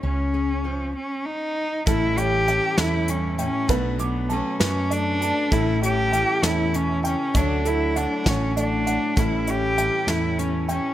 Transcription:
<<
  \new Staff \with { instrumentName = "Upright piano" } { \time 6/8 \key a \mixolydian \tempo 4. = 66 r2. | a'8 cis''8 g''8 a'4 g''8 | b'8 d'''8 a''8 b'8 d''8 a''8 | a'8 cis''8 g''8 a'4 g''8 |
cis''8 a'8 fis''8 cis''8 d''8 fis''8 | a'8 cis''8 g''8 a'4 g''8 | }
  \new Staff \with { instrumentName = "Cello" } { \time 6/8 \key a \mixolydian cis'4. cis'8 dis'4 | e'8 g'4 e'8 cis'8 cis'8 | b8 b8 cis'8 cis'8 d'4 | e'8 g'4 e'8 cis'8 cis'8 |
d'8 e'8 d'8 cis'8 d'4 | e'8 g'4 e'8 cis'8 cis'8 | }
  \new Staff \with { instrumentName = "Steel-string acoustic guitar" } { \time 6/8 \key a \mixolydian r2. | <a, e g cis' e'>4 <e g cis' e'>8 <a, e cis' e'>4 <g cis' e'>8 | <b, fis a d' fis'>4 <fis a fis'>8 <b, fis a fis'>4 <a d' fis'>8 | <a, e g cis' e'>4 <e g cis' e'>8 <a, e g cis' e'>4 <g cis' e'>8 |
<d a fis'>4 <d a fis'>8 <d a fis'>4 <a fis'>8 | <a, e g cis' e'>4 <e g cis' e'>8 <a, e g cis' e'>4 <g cis' e'>8 | }
  \new Staff \with { instrumentName = "Steel-string acoustic guitar" } { \clef bass \time 6/8 \key a \mixolydian << { cis'8 gis'8 eis'8 r4. | r4 e'2 | r2 a8 d'8 | r4 e'2 |
<fis a d' fis'>2 a8 d'8 | <e cis'>4 e'4 cis'8 e'8 | } \\ { cis4 eis8 r4. | a,8 e4 fis,8 g,8 a,8 | b,8 fis4 fis,4. | a,8 e4 a,8 b,8 cis8 |
d8 fis4 a,4. | a,8 e4 a,4. | } >> }
  \new Staff \with { instrumentName = "Fretless electric bass" } { \clef bass \time 6/8 \key a \mixolydian cis,4. r4. | a,,4. e,4. | b,,4. fis,4. | a,,4. e,4. |
d,4. a,,4. | a,,4. e,4. | }
  \new DrumStaff \with { instrumentName = "Drums" } \drummode { \time 6/8 r4. r4. | <hh bd>8 hh8 hh8 <hh sn>8 hh8 hh8 | <hh bd>8 hh8 hh8 <hh sn>8 hh8 hh8 | <hh bd>8 hh8 hh8 <hh sn>8 hh8 hh8 |
<hh bd>8 hh8 hh8 <hh bd sn>8 hh8 hh8 | <hh bd>8 hh8 hh8 <hh sn>8 hh8 hh8 | }
>>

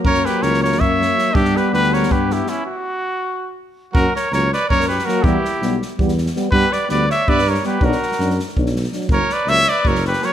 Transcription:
<<
  \new Staff \with { instrumentName = "Trumpet" } { \time 7/8 \tempo 4 = 163 cis''8 b'8 cis''8 cis''8 e''4. | g'8 b'8 b'8 cis''8 b'8 g'8 e'8 | fis'2~ fis'8 r4 | ais'8 cis''8 cis''8 d''8 cis''8 b'8 ais'8 |
g'4. r2 | b'8 d''8 d''8 e''8 d''8 cis''8 b'8 | ais'4. r2 | cis''8 d''8 e''8 d''8 cis''8 b'8 cis''8 | }
  \new Staff \with { instrumentName = "Trumpet" } { \time 7/8 ais'8 g'8 ais'8 ais'8 cis''4. | d'8 g'8 g'8 ais'8 g'8 e'8 cis'8 | r2. r8 | fis'8 ais'8 ais'8 b'8 ais'8 g'8 fis'8 |
e'4. r2 | g'8 b'8 b'8 cis''8 b'8 ais'8 g'8 | fis'4. r2 | ais'8 b'8 cis''8 b'8 ais'8 g'8 ais'8 | }
  \new Staff \with { instrumentName = "Euphonium" } { \time 7/8 ais2.~ ais8 | b2.~ b8 | r2. r8 | ais4 ais4 ais4 ais8 |
b4 b4 b4 b8 | b4 b4 b4 b8 | d'4 d'4 d'4 d'8 | ais4 ais4 ais4 ais8 | }
  \new Staff \with { instrumentName = "Euphonium" } { \clef bass \time 7/8 fis2.~ fis8 | g2.~ g8 | r2. r8 | fis4 fis4 fis4 fis8 |
g4 g4 g4 g8 | g4 g4 g4 g8 | fis4 fis4 fis4 fis8 | fis4 fis4 fis4 fis8 | }
  \new Staff \with { instrumentName = "Tuba" } { \clef bass \time 7/8 fis,4 cis,4 fis,4. | g,4 d,4 g,4. | r2. r8 | fis,8 r8 cis,4 fis,4. |
e,8 r8 b,,4 e,4. | g,8 r8 d,4 g,4. | b,,8 r8 fis,4 b,,4. | fis,,8 r8 cis,4 fis,,4. | }
  \new DrumStaff \with { instrumentName = "Drums" } \drummode { \time 7/8 bd16 sn16 sn8 sn16 sn16 sn16 sn16 bd8 sn8 sn8 | bd16 sn16 sn8 sn16 sn16 sn16 sn16 bd8 sn8 sn8 | r4 r4 r4. | bd8 sn8 sn8 sn8 bd16 sn16 sn16 sn16 sn8 |
bd8 sn8 sn8 sn8 bd16 sn16 sn16 sn16 sn8 | bd8 sn8 sn8 sn8 bd16 sn16 sn16 sn16 sn8 | bd16 sn16 sn16 sn16 sn16 sn16 sn16 sn16 bd16 sn16 sn16 sn16 sn16 sn16 | bd8 sn8 sn8 sn8 bd16 sn16 sn16 sn16 sn8 | }
>>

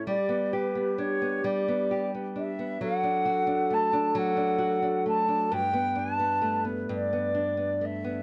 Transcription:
<<
  \new Staff \with { instrumentName = "Flute" } { \time 6/8 \key g \lydian \tempo 4. = 44 d''8 b'8 cis''8 d''8 r8 e''8 | fis''4 a''8 fis''4 a''8 | g''8 a''8 r8 d''4 e''8 | }
  \new Staff \with { instrumentName = "Flute" } { \time 6/8 \key g \lydian g'2~ g'8 r8 | a'2. | b'2~ b'8 r8 | }
  \new Staff \with { instrumentName = "Nylon-string guitar" } { \time 6/8 \key g \lydian g16 b16 g'16 b16 d'16 b16 g16 b16 g'16 b16 d'16 b16 | fis16 d'16 fis'16 d'16 a16 d'16 fis16 d'16 fis'16 d'16 a16 d'16 | g,16 b16 d'16 b16 a16 b16 g,16 b16 d'16 b16 a16 b16 | }
>>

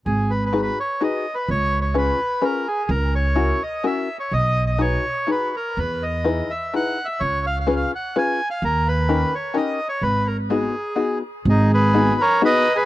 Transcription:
<<
  \new Staff \with { instrumentName = "Bandoneon" } { \time 3/4 \key gis \minor \tempo 4 = 126 \tuplet 3/2 { gis'8. b'8 b'16~ b'16 b'8 cis''8. dis''4 b'8 } | cis''8 r8 b'4 ais'8 gis'8 | ais'8 cis''4 dis''8 \tuplet 3/2 { e''4 cis''8 } | dis''8 r8 cis''4 b'8 ais'8 |
b'8 dis''4 e''8 \tuplet 3/2 { fis''4 e''8 } | \tuplet 3/2 { cis''8. eis''8 eis''16~ eis''16 eis''8 fis''8. gis''4 eis''8 } | ais'8 b'4 cis''8 \tuplet 3/2 { dis''4 cis''8 } | b'8 ais'8 gis'4. r8 |
<dis' gis'>8 <gis' b'>4 <ais' cis''>8 \tuplet 3/2 { <b' dis''>4 <gis' b'>8 } | }
  \new Staff \with { instrumentName = "Five-string banjo" } { \time 3/4 \key gis \minor r4 <dis' fis' gis' b'>8 r8 <dis' fis' gis' b'>8 r8 | r4 <cis' eis' gis' b'>8 r8 <cis' eis' gis' b'>8 r8 | r4 <cis' e' fis' ais'>8 r8 <cis' e' fis' ais'>8 r8 | r4 <dis' fis' gis' b'>8 r8 <dis' fis' gis' b'>8 r8 |
r4 <dis' e' gis' b'>8 r8 <dis' e' gis' b'>8 r8 | r4 <cis' eis' gis' b'>8 r8 <cis' eis' gis' b'>8 r8 | r4 <cis' dis' g' ais'>8 r8 <cis' dis' g' ais'>8 r8 | r4 <b dis' fis' gis'>8 r8 <b dis' fis' gis'>8 r8 |
r4 <b dis' fis' gis'>8 r8 <b dis' fis' gis'>8 r8 | }
  \new Staff \with { instrumentName = "Upright bass" } { \clef bass \time 3/4 \key gis \minor gis,,2 r4 | cis,2 r4 | cis,2 r4 | b,,2 r4 |
e,2 r4 | cis,2 r4 | dis,2 r4 | gis,,2 r4 |
gis,,2 r4 | }
>>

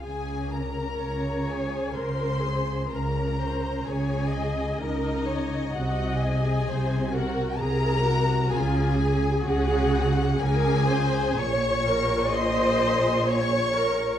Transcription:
<<
  \new Staff \with { instrumentName = "Violin section" } { \time 3/4 \key bes \minor \tempo 4 = 64 aes''8 bes''4 aes''8 c'''4 | bes''4 aes''4 ees''4 | ges''8 aes''4 ges''8 bes''4 | aes''4 ges''4 aes''4 |
\key ees \mixolydian des'''4 c'''4 des'''4 | }
  \new Staff \with { instrumentName = "Viola section" } { \time 3/4 \key bes \minor r4 des''4 bes'8 aes'8 | bes'8 c''8 des''8 ees''8 bes'8 des''8 | ees''4 c''8 bes'8 aes'8 ges'8 | f'8 aes'4. bes'8 c''8 |
\key ees \mixolydian des''8 bes'8 ees''4 des''8 bes'8 | }
  \new Staff \with { instrumentName = "Violin section" } { \time 3/4 \key bes \minor aes'8 bes'4 aes'8 c''4 | bes'4 aes'4 ees'4 | ges'8 aes'4 ges'8 bes'4 | aes'4 ges'4 aes'4 |
\key ees \mixolydian des''4 c''4 des''4 | }
  \new Staff \with { instrumentName = "Cello section" } { \clef bass \time 3/4 \key bes \minor des4 des4 des4 | des4 des4 des4 | c4 c4 c4 | des4 des4 des4 |
\key ees \mixolydian bes,2. | }
  \new Staff \with { instrumentName = "Double bass section" } { \clef bass \time 3/4 \key bes \minor des,4 des,4 des,4 | des,4 des,4 des,4 | c,4 c,4 c,4 | des,4 des,4 des,4 |
\key ees \mixolydian bes,,2. | }
>>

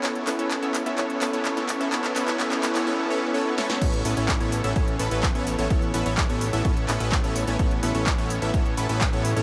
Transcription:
<<
  \new Staff \with { instrumentName = "Supersaw synth" } { \time 4/4 \key a \major \tempo 4 = 127 <b cis' e' a' cis''>8 <b cis' e' a' b'>16 <b cis' e' a' cis''>8 <b cis' e' a' cis''>8 <b cis' e' a' e''>16 <b cis' e' a' cis''>8 <b cis' e' a' b'>16 <b cis' e' a' cis''>8 <b cis' e' a' cis''>8 <b cis' e' a' e''>16 | <b cis' e' a' cis''>8 <b cis' e' a' b'>16 <b cis' e' a' cis''>16 <b cis' e' a' cis''>8 <b cis' e' a' b'>16 <b cis' e' a' cis''>16 <b cis' e' a' cis''>8 <b cis' e' a' cis''>8 <b cis' e' a' cis''>8 <b cis' e' a' cis''>8 | <b cis' e' a' cis''>8 <b cis' e' a' b'>16 <b cis' e' a' cis''>8 <b cis' e' a' cis''>8 <b cis' e' a' e''>16 <b cis' e' a' cis''>8 <b cis' e' a' b'>16 <b cis' e' a' b'>8 <b cis' e' a' cis''>8 <b cis' e' a' cis''>16 | <b e'>8 <b cis' e' a' b'>16 <b cis' e' a' cis''>8 <b cis' e' a' cis''>8 <b cis' e' a' e''>16 <b cis' e' cis''>8 <b cis' e' a' b'>16 <b cis' e' a' b'>8 <b cis' e' a' cis''>8 <b cis' e' a' cis''>16 |
<b cis' e' a' cis''>8 <b cis' e' a' b'>16 <b cis' e' a' cis''>8 <b cis' e' a' cis''>8 <b cis' e' a' e''>16 <b cis'>8 <b cis' e' a' b'>16 <b cis' e' a' b'>8 <b cis' e' a' cis''>8 <b cis' e' a' cis''>16 | }
  \new Staff \with { instrumentName = "Analog synth bass" } { \clef bass \time 4/4 \key a \major r1 | r1 | a,,8 a,,16 a,,8 a,,8 a,,16 r8 a,,16 a,,8 a,,8 a,,16 | a,,8 a,,16 a,,8 a,,8 a,,16 r8 a,,16 a,,8 a,,8 a,,16 |
r8 a,,16 a,,8 a,,8 a,,16 r8 a,,16 a,,8 a,,8 a,,16 | }
  \new DrumStaff \with { instrumentName = "Drums" } \drummode { \time 4/4 <hc hh>16 hh16 <hc hho>16 hh16 <hc hh>16 hh16 <hc hho>16 hh16 <hc hh>16 hh16 <hc hho>16 hh16 <hc hh>16 hh16 <hc hho>16 hh16 | <hc hh>16 <hc hh>16 <hc hho>16 <hc hh>16 <hc hh>16 <hc hh>16 <hc hho>16 <hc hho>16 r4 r8 sn16 sn16 | <cymc hh bd>16 hh16 hho16 hh16 <hc hh bd>16 hh16 hho16 hh16 <hh bd>16 hh16 hho16 hh16 <hc hh bd>16 hh16 hho16 hh16 | <hh bd>16 hh16 hho16 hh16 <hc hh bd>16 hh16 hho16 hh16 <hh bd>16 hh16 <hc hho>16 hh16 <hc hh bd>16 hh16 hho16 hh16 |
<hh bd>16 hh16 hho16 hh16 <hc hh bd>16 hh16 hho16 hh16 <hh bd>16 hh16 hho16 hh16 <hc hh bd>16 hh16 hho16 hh16 | }
>>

